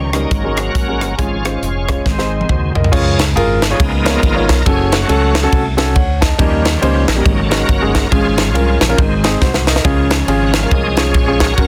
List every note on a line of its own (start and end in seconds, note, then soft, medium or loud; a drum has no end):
0.00 0.25 C#2 medium
0.00 0.10 F3 soft
0.00 0.11 G3 soft
0.00 0.11 C#4 medium
0.00 0.30 D#5 medium
0.00 0.30 G5 medium
0.00 1.16 A#5 medium
0.00 2.02 C#6 medium
0.13 0.31 F#3 medium
0.13 0.28 G3 medium
0.13 0.32 A#3 medium
0.13 0.28 C#4 medium
0.13 0.28 D#4 medium
0.13 0.59 D#4 medium
0.13 0.28 A#4 medium
0.13 cross-stick medium
0.13 closed hi-hat medium
0.30 0.68 G#1 medium
0.30 0.97 G#2 medium
0.30 1.15 F#3 soft
0.30 1.15 A#3 soft
0.30 0.58 C#4 soft
0.30 1.17 F#5 medium
0.30 2.90 G#5 medium
0.30 kick loud
0.30 closed hi-hat medium
0.44 0.68 G#3 medium
0.44 0.68 C#4 medium
0.44 0.68 F#4 medium
0.44 0.69 A#4 medium
0.57 1.15 C#4 medium
0.57 1.15 F#4 medium
0.57 1.21 A#4 loud
0.57 cross-stick loud
0.57 closed hi-hat medium
0.75 1.01 A#1 medium
0.75 kick medium
0.75 closed hi-hat medium
0.88 1.07 G#3 medium
0.88 1.07 C#4 medium
0.88 1.07 F#4 medium
0.88 1.07 A#4 medium
1.01 1.16 G1 medium
1.01 cross-stick medium
1.01 closed hi-hat medium
1.18 1.56 G#1 medium
1.18 1.84 G#2 medium
1.18 1.50 F3 soft
1.18 1.33 G#3 medium
1.18 1.44 G#3 soft
1.18 1.33 C#4 medium
1.18 1.44 C#4 medium
1.18 1.34 F4 medium
1.18 1.44 F4 medium
1.18 1.43 G#4 medium
1.18 2.04 C#5 medium
1.18 1.34 C#5 medium
1.18 2.05 F5 medium
1.18 kick medium
1.18 closed hi-hat medium
1.45 1.66 G#3 medium
1.45 2.02 G#3 medium
1.45 1.66 C#4 soft
1.45 2.02 C#4 soft
1.45 1.66 F4 medium
1.45 1.86 F4 medium
1.45 1.66 C5 medium
1.45 cross-stick loud
1.45 closed hi-hat medium
1.62 1.99 F1 medium
1.62 closed hi-hat medium
1.88 2.03 G#3 medium
1.88 2.03 C#4 medium
1.88 2.03 F4 medium
1.88 2.03 C#5 medium
1.88 kick medium
1.88 cross-stick loud
1.88 closed hi-hat medium
2.05 2.43 G#1 medium
2.05 2.71 G#2 medium
2.05 2.72 D#3 soft
2.05 2.73 G#3 soft
2.05 2.73 C4 soft
2.05 2.92 C5 medium
2.05 2.92 D#5 medium
2.05 2.92 C6 medium
2.05 kick medium
2.05 snare soft
2.18 2.43 G#3 medium
2.18 2.43 C4 medium
2.18 2.43 D#4 medium
2.18 2.43 C5 medium
2.18 snare soft
2.41 high tom medium
2.49 2.72 D#2 medium
2.49 2.74 F#4 soft
2.49 2.74 C5 medium
2.49 kick medium
2.49 mid tom medium
2.75 2.90 C2 medium
2.75 3.17 A#4 soft
2.75 3.16 D#5 medium
2.75 floor tom medium
2.84 floor tom medium
2.92 3.37 C#2 loud
2.92 3.58 C#3 medium
2.92 3.24 F3 medium
2.92 3.24 G#3 medium
2.92 3.25 C#4 medium
2.92 3.21 F4 medium
2.92 3.21 G#4 medium
2.92 3.21 C#5 loud
2.92 kick loud
2.92 crash loud
3.19 snare loud
3.19 ride medium
3.36 3.73 G#1 medium
3.36 3.58 F4 medium
3.36 3.58 G#4 medium
3.36 3.58 A#4 loud
3.36 ride medium
3.62 4.46 G#3 medium
3.62 3.80 B3 medium
3.62 3.80 D#4 medium
3.62 snare loud
3.62 ride medium
3.70 3.79 F4 medium
3.70 3.79 G#4 medium
3.70 3.79 C#5 medium
3.79 4.17 C#2 loud
3.79 4.45 C#3 medium
3.79 4.45 F3 medium
3.79 4.46 A#3 medium
3.79 4.46 B3 medium
3.79 4.06 D#4 medium
3.79 kick loud
3.79 ride medium
4.04 4.20 B3 medium
4.04 4.20 D#4 medium
4.04 4.63 D#4 medium
4.04 4.20 F4 medium
4.04 4.63 F4 medium
4.04 4.20 A#4 medium
4.04 4.46 A#4 loud
4.04 4.20 C#5 medium
4.04 snare loud
4.04 ride medium
4.23 4.50 G#1 medium
4.23 kick loud
4.23 ride medium
4.35 4.54 B3 medium
4.35 4.54 D#4 medium
4.35 4.55 F4 medium
4.35 4.55 A#4 medium
4.35 4.55 C#5 medium
4.49 4.64 B1 loud
4.49 4.67 A#4 loud
4.49 kick medium
4.49 snare loud
4.49 ride medium
4.66 5.03 F#1 loud
4.66 4.94 C#4 medium
4.66 4.92 C#4 medium
4.66 4.94 F#4 medium
4.66 4.90 G#4 loud
4.66 4.94 A4 medium
4.66 kick loud
4.66 ride medium
4.92 5.49 F#3 medium
4.92 5.75 A3 medium
4.92 5.50 C#4 medium
4.92 5.33 F#4 medium
4.92 snare loud
4.92 ride medium
5.08 5.46 C#2 loud
5.08 5.31 C#4 medium
5.08 5.31 F#4 medium
5.08 5.31 A4 medium
5.08 ride medium
5.35 snare loud
5.35 ride medium
5.43 5.61 C#4 medium
5.43 5.62 F#4 medium
5.43 5.61 A4 loud
5.52 5.96 C2 medium
5.52 kick loud
5.52 ride medium
5.77 5.93 C#4 medium
5.77 5.93 F#4 medium
5.77 5.93 A4 loud
5.77 snare loud
5.77 ride medium
5.95 6.32 D2 medium
5.95 6.20 C#5 medium
5.95 6.20 F#5 medium
5.95 kick loud
5.95 ride medium
6.21 6.63 D#5 medium
6.21 6.62 A5 medium
6.21 kick medium
6.21 snare loud
6.21 ride medium
6.38 6.76 D#2 loud
6.38 7.04 D#3 medium
6.38 7.05 F3 medium
6.38 6.67 G3 medium
6.38 7.05 G3 medium
6.38 6.67 A#3 medium
6.38 6.67 C#4 medium
6.38 7.05 C#4 medium
6.38 6.67 D#4 medium
6.38 6.67 A#4 medium
6.38 kick loud
6.38 ride medium
6.65 snare loud
6.65 ride medium
6.82 7.05 C#2 loud
6.82 7.04 G3 medium
6.82 7.04 A#3 medium
6.82 7.05 C#4 medium
6.82 7.05 D#4 medium
6.82 7.05 C5 loud
6.82 ride medium
7.08 7.23 A#1 loud
7.08 7.23 F#3 medium
7.08 7.25 A#3 medium
7.08 7.41 D#4 loud
7.08 snare loud
7.08 ride medium
7.16 7.25 G3 medium
7.16 7.25 A#3 medium
7.16 7.25 C#4 medium
7.16 7.25 D#4 medium
7.16 7.25 G4 medium
7.24 7.62 G#1 loud
7.24 7.90 G#2 medium
7.24 8.07 F#3 medium
7.24 8.08 A#3 medium
7.24 7.51 C#4 medium
7.24 kick loud
7.24 ride medium
7.43 7.52 A4 medium
7.50 7.66 G#3 medium
7.50 7.66 C#4 medium
7.50 8.08 C#4 medium
7.50 7.66 D#4 medium
7.50 7.66 F#4 medium
7.50 8.08 F#4 medium
7.50 7.66 A#4 medium
7.50 7.92 A#4 loud
7.50 snare loud
7.50 ride medium
7.69 8.06 G1 medium
7.69 kick medium
7.69 ride medium
7.81 8.01 G#3 medium
7.81 8.01 C#4 medium
7.81 8.01 D#4 medium
7.81 8.01 F#4 medium
7.81 8.01 G#4 medium
7.95 8.11 A#4 medium
7.95 kick medium
7.95 snare loud
7.95 ride medium
8.11 8.54 G#1 loud
8.11 8.77 G#2 medium
8.11 8.77 F3 medium
8.11 8.38 G#3 medium
8.11 8.40 C#4 medium
8.11 8.37 C#4 medium
8.11 8.41 F4 medium
8.11 8.38 F4 medium
8.11 8.41 G#4 medium
8.11 8.39 G#4 loud
8.11 kick loud
8.11 ride medium
8.38 8.95 G#3 medium
8.38 8.95 C#4 medium
8.38 8.79 F4 medium
8.38 snare loud
8.38 ride medium
8.54 8.77 C2 loud
8.54 8.77 C#4 medium
8.54 8.77 F4 medium
8.54 8.77 A#4 medium
8.54 ride medium
8.81 8.96 A#1 medium
8.81 snare loud
8.81 ride medium
8.89 8.98 C#4 medium
8.89 8.98 F4 medium
8.89 8.98 A#4 loud
8.97 9.35 G#1 loud
8.97 9.63 G#2 medium
8.97 9.29 D#3 medium
8.97 9.29 G#3 soft
8.97 9.30 C4 medium
8.97 kick loud
8.97 ride medium
9.24 9.39 C4 medium
9.24 9.39 D#4 medium
9.24 9.39 G#4 medium
9.24 snare loud
9.24 ride medium
9.41 9.78 C2 medium
9.41 9.66 F#4 medium
9.41 9.66 C5 medium
9.41 kick medium
9.41 snare medium
9.54 snare medium
9.67 10.09 A#4 medium
9.67 10.09 D#5 medium
9.67 snare loud
9.76 snare medium
9.84 10.22 C#2 medium
9.84 10.50 C#3 medium
9.84 11.53 F3 medium
9.84 11.54 G#3 medium
9.84 10.13 C#4 loud
9.84 11.54 C#4 medium
9.84 10.13 F4 medium
9.84 10.14 G#4 loud
9.84 kick loud
9.84 ride medium
10.11 snare loud
10.11 ride medium
10.28 10.65 G#1 loud
10.28 10.50 C#4 loud
10.28 10.51 F4 medium
10.28 10.51 G#4 loud
10.28 ride medium
10.47 10.54 F#5 medium
10.54 10.72 F5 loud
10.54 snare loud
10.54 ride medium
10.62 10.80 C#4 medium
10.62 10.81 F4 medium
10.62 10.81 A#4 medium
10.71 11.15 C2 loud
10.71 11.55 G#4 medium
10.71 10.99 D#5 loud
10.71 kick loud
10.71 ride medium
10.97 11.12 C#4 medium
10.97 11.12 F4 medium
10.97 11.12 G#4 medium
10.97 11.15 C#5 loud
10.97 snare loud
10.97 ride medium
11.14 11.51 A#1 medium
11.14 11.40 C#5 loud
11.14 kick loud
11.14 ride medium
11.27 11.47 C#4 medium
11.27 11.47 F4 medium
11.27 11.47 G#4 medium
11.40 11.67 F#4 medium
11.40 11.67 A#4 medium
11.40 11.67 C#5 loud
11.40 kick medium
11.40 snare loud
11.40 ride medium
11.58 11.67 F#1 loud
11.58 11.67 C#4 medium
11.58 11.67 F#4 medium
11.58 11.67 A#4 medium
11.58 kick loud
11.58 ride medium